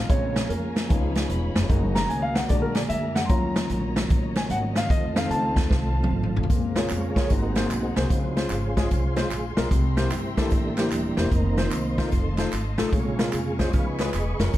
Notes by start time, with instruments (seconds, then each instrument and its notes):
Already playing: grand piano F5
0.09 upright bass A#1, grand piano C#3 G#3 C4 C#5, tonewheel organ F3 A#3 C#4 G#4, string section C#5 F5 G#5 A#5, kick, closed hi-hat
0.36 snare, closed hi-hat
0.49 upright bass F2, grand piano A#4, closed hi-hat
0.76 snare, closed hi-hat
0.89 upright bass C#2, grand piano F3 B3 D#4, tonewheel organ B3 G#4, string section B5, kick, closed hi-hat
1.15 snare, closed hi-hat
1.29 upright bass E1, closed hi-hat
1.55 upright bass F1, snare, closed hi-hat
1.69 upright bass F#1, tonewheel organ D#3 A#3 F#4, grand piano G#3 A#3 D#4, string section D#5 A#5, kick, closed hi-hat
1.95 grand piano A#5, snare, closed hi-hat
2.09 upright bass C#2, grand piano G#5, closed hi-hat
2.22 grand piano F5
2.35 grand piano F#5, snare, closed hi-hat
2.49 upright bass A#1, tonewheel organ D3 F#3 G#3, grand piano G#3 D4 F#4 D5, string section D5 G#5, kick, closed hi-hat
2.62 grand piano A#4
2.75 grand piano D5, snare, closed hi-hat
2.89 upright bass F#2, grand piano E5, closed hi-hat
3.15 grand piano F#5, snare, closed hi-hat
3.25 grand piano C6
3.29 upright bass D#2, tonewheel organ D#3 C#4, grand piano F#3 C#4 F4 A#5, string section C#5 D#5, kick, closed hi-hat
3.56 snare, closed hi-hat
3.69 upright bass A#1, closed hi-hat
3.96 snare, closed hi-hat
4.10 upright bass A#1, kick, closed hi-hat
4.35 grand piano G#5, snare, closed hi-hat
4.50 upright bass G#1, grand piano F#5, closed hi-hat
4.76 grand piano F5, snare, closed hi-hat
4.90 upright bass F2, tonewheel organ A3 C4 F4, string section C5 F5 A5, grand piano D#5, kick, closed hi-hat
5.16 grand piano A3 C4 D#4 F5, snare, closed hi-hat
5.30 upright bass C#2, grand piano A5, closed hi-hat
5.56 upright bass D#2, kick, snare, closed hi-hat
5.71 upright bass C2, kick, snare
6.04 high tom
6.10 upright bass G#1
6.23 mid tom
6.36 upright bass A1, floor tom
6.43 floor tom
6.50 upright bass A#1, grand piano A#2, tonewheel organ C#3 G#3 C4, string section A#4 F5 G#5 A#5, kick, closed hi-hat, tambourine
6.76 grand piano A#3 F4 G#4 C#5, snare, closed hi-hat, tambourine
6.89 upright bass F2, tonewheel organ F4 G#4 C#5, clap, closed hi-hat, tambourine
7.16 grand piano A#3 F4 G#4 C#5, kick, snare, closed hi-hat, tambourine
7.29 upright bass G#1, grand piano G#2, tonewheel organ F#3 A#3 C4 D#4 F#4 A#4, string section C5 F#5, kick, closed hi-hat, tambourine
7.47 tonewheel organ G4
7.55 grand piano A#3 F#4 G#4 C5, tonewheel organ C4 D#4 G#4, snare, clap, closed hi-hat, tambourine
7.70 upright bass B1, clap, closed hi-hat, tambourine
7.96 upright bass C2, grand piano A#3 F#4 G#4 C5, tonewheel organ F#4 C5, snare, closed hi-hat, tambourine
8.10 upright bass C#2, grand piano C#3, tonewheel organ F3 C4 D#4, string section C#4 F5 C6, kick, closed hi-hat, tambourine
8.36 grand piano G#3 C#4 F4 C5, tonewheel organ C#4 F4 G#4, snare, closed hi-hat, tambourine
8.50 upright bass G#1, clap, closed hi-hat, tambourine
8.77 grand piano G#3 C#4 F4 G#4, tonewheel organ F4 G#4 C5, kick, snare, closed hi-hat, tambourine
8.91 upright bass C2, kick, closed hi-hat, tambourine
9.16 grand piano G#3 C#4 F4 C5, snare, clap, closed hi-hat, tambourine
9.31 upright bass A#1, clap, closed hi-hat, tambourine
9.57 upright bass B1, grand piano G#3 C#4 F4 A#4, snare, closed hi-hat, tambourine
9.71 upright bass C2, grand piano C3, string section E5 G5 A#5, kick, closed hi-hat, tambourine
9.97 grand piano A#3 E4 G4 C5, snare, closed hi-hat, tambourine
10.11 upright bass G1, tonewheel organ E4 G4 C5, clap, closed hi-hat, tambourine
10.37 tonewheel organ E3 A#3 D4, grand piano A#3 E4 G4 A4, kick, snare, closed hi-hat, tambourine
10.50 upright bass A1, tonewheel organ E4 A4, kick, closed hi-hat, tambourine
10.77 grand piano A#3 E4 G4 C5, tonewheel organ A#3 E4 G4, snare, clap, closed hi-hat, tambourine
10.91 upright bass D#1, clap, closed hi-hat, tambourine
11.17 upright bass E1, grand piano A#3 E4 G4 C5, snare, closed hi-hat, tambourine
11.31 upright bass F1, tonewheel organ D#3 A#3 C4 D#4 A#4, string section D#5 F5 C6, kick, closed hi-hat, tambourine
11.58 grand piano A#3 D#4 F4 C5, tonewheel organ D#4 C5, snare, closed hi-hat, tambourine
11.71 upright bass C2, clap, closed hi-hat, tambourine
11.98 grand piano A#3 D#4 F4 C5, tonewheel organ C4 D#4 A4, kick, snare, closed hi-hat, tambourine
12.11 upright bass F1, tonewheel organ D#3 A3 C4, string section D#5 A5, kick, closed hi-hat, tambourine
12.37 grand piano A3 D#4 F4 C5, snare, clap, closed hi-hat, tambourine
12.52 upright bass G#1, clap, closed hi-hat, tambourine
12.78 upright bass A1, grand piano A3 D#4 F4 A4, snare, closed hi-hat, tambourine
12.88 tonewheel organ D#5
12.92 upright bass A#1, grand piano A#2, tonewheel organ C3 C#3 G#3 F4 G#4 C#5, string section G#5 A#5 C#6, kick, closed hi-hat, tambourine
13.19 grand piano G#3 C#4 F4 A#4, snare, closed hi-hat, tambourine
13.33 upright bass F2, clap, closed hi-hat, tambourine
13.59 grand piano G#3 C#4 F4 C5, tonewheel organ D#5, kick, snare, closed hi-hat, tambourine
13.73 upright bass C#2, grand piano C#3, tonewheel organ F3 B3 D#4 G#4 B4 F5, string section B5, kick, closed hi-hat, tambourine
13.99 grand piano G#3 C#4 F4 B4, tonewheel organ G#4 B4 D#5, snare, clap, closed hi-hat, tambourine
14.13 upright bass E1, clap, closed hi-hat, tambourine
14.39 upright bass F1, grand piano G#3 C#4 F4 A#4, tonewheel organ A#4 C#5, snare, closed hi-hat, tambourine
14.53 upright bass F#1, tonewheel organ G#3 A#3 D#4, string section F#5 A#5, kick, closed hi-hat, tambourine